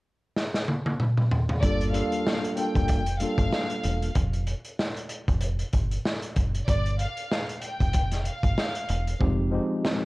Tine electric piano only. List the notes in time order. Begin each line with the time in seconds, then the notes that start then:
1.62 G3 A#3 D4 F4 A4
1.92 G3 A#3 D4 F4 A4
2.56 G3 A#3 D4 F4 A4
3.20 G3 A#3 D4 F4 A4
9.20 F3 G#3 C4 D#4 G4
9.51 F3 G#3 C4 D#4 G4